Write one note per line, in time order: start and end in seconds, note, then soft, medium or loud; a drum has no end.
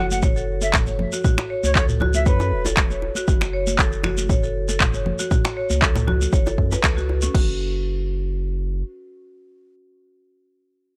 0.00 1.05 F#1 loud
0.11 0.19 F#5 medium
0.11 high conga medium
0.11 shekere medium
0.22 0.30 C#5 loud
0.22 kick loud
0.22 mid tom medium
0.22 shekere medium
0.36 0.47 A4 medium
0.36 shekere soft
0.61 0.73 A4 medium
0.61 0.74 E5 medium
0.61 muted conga medium
0.61 shekere medium
0.74 finger snap medium
0.74 kick loud
0.74 clap loud
0.74 mid tom medium
0.74 shekere medium
0.87 0.98 C#5 medium
0.87 muted conga soft
0.87 high conga medium
0.87 shekere soft
0.99 high conga medium
0.99 low conga loud
1.13 1.23 F#4 medium
1.13 muted conga soft
1.13 shekere medium
1.24 1.37 F#4 medium
1.24 kick loud
1.24 mid tom medium
1.24 shekere medium
1.37 finger snap medium
1.37 muted conga medium
1.37 djembe slap medium
1.37 shekere soft
1.50 1.62 C#5 loud
1.64 2.28 C#2 loud
1.64 1.71 C#5 medium
1.64 high conga medium
1.64 shekere medium
1.75 1.83 A4 loud
1.75 1.84 C#5 medium
1.75 kick loud
1.75 clap loud
1.75 muted conga soft
1.75 shekere medium
1.89 mid tom medium
1.89 high conga medium
1.89 shekere soft
2.00 2.08 F#4 loud
2.00 muted conga medium
2.00 djembe tone medium
2.00 low conga medium
2.14 2.24 E5 loud
2.14 high conga medium
2.14 shekere medium
2.26 2.53 F#2 loud
2.26 2.65 B4 loud
2.26 2.34 C#5 loud
2.26 kick loud
2.26 muted conga soft
2.26 shekere medium
2.40 2.51 A4 medium
2.40 djembe tone medium
2.40 shekere soft
2.52 3.09 E1 loud
2.65 2.77 A4 medium
2.65 muted conga soft
2.65 djembe tone medium
2.65 shekere medium
2.77 finger snap medium
2.77 kick loud
2.77 clap loud
2.77 shekere medium
2.90 3.02 C#5 medium
2.90 muted conga soft
2.90 shekere soft
3.02 djembe tone medium
3.15 3.27 F#4 medium
3.15 muted conga medium
3.15 shekere medium
3.28 5.12 F#1 loud
3.28 3.40 F#4 medium
3.28 kick loud
3.28 shekere medium
3.41 finger snap medium
3.41 djembe slap medium
3.41 muted conga medium
3.41 shekere soft
3.53 3.66 C#5 loud
3.67 high conga medium
3.67 shekere medium
3.78 3.86 A4 loud
3.78 kick loud
3.78 clap medium
3.78 muted conga soft
3.78 shekere medium
3.92 shekere soft
4.03 4.11 F#4 loud
4.03 finger snap medium
4.03 muted conga medium
4.03 djembe tone medium
4.03 low conga medium
4.18 high conga medium
4.18 shekere medium
4.29 4.37 C#5 loud
4.29 kick loud
4.29 mid tom medium
4.29 muted conga soft
4.29 shekere medium
4.43 4.54 A4 medium
4.43 shekere soft
4.69 4.80 A4 medium
4.69 muted conga medium
4.69 shekere medium
4.80 finger snap medium
4.80 kick loud
4.80 clap loud
4.80 mid tom medium
4.80 shekere medium
4.94 5.05 C#5 medium
4.94 muted conga soft
4.94 high conga medium
4.94 shekere soft
5.06 high conga medium
5.06 low conga loud
5.19 5.30 F#4 medium
5.19 muted conga medium
5.19 shekere medium
5.31 5.43 F#4 medium
5.31 kick loud
5.31 mid tom loud
5.31 shekere medium
5.45 finger snap medium
5.45 djembe slap medium
5.45 muted conga medium
5.45 shekere soft
5.57 5.69 C#5 loud
5.70 6.27 C#2 loud
5.70 high conga medium
5.70 shekere medium
5.82 5.89 A4 loud
5.82 kick loud
5.82 clap loud
5.82 shekere medium
5.95 mid tom medium
5.95 djembe slap medium
5.95 high conga medium
5.95 shekere soft
6.07 6.15 F#4 loud
6.07 muted conga medium
6.07 djembe tone medium
6.07 low conga loud
6.21 high conga medium
6.21 shekere medium
6.33 6.58 F#1 medium
6.33 6.40 C#5 loud
6.33 kick loud
6.33 muted conga soft
6.33 shekere medium
6.46 6.57 A4 medium
6.46 djembe tone medium
6.46 shekere soft
6.58 6.76 F#2 medium
6.58 kick medium
6.71 6.82 B4 medium
6.71 muted conga medium
6.71 djembe tone medium
6.71 shekere medium
6.83 7.28 C#2 medium
6.83 6.91 A4 medium
6.83 finger snap medium
6.83 kick loud
6.83 clap loud
6.83 shekere medium
6.97 7.08 F#4 loud
6.97 muted conga soft
6.97 shekere soft
7.09 djembe tone medium
7.22 7.33 C#4 medium
7.22 muted conga medium
7.22 shekere medium
7.34 8.83 F#1 loud
7.34 7.58 F#4 medium
7.34 kick loud
7.34 crash medium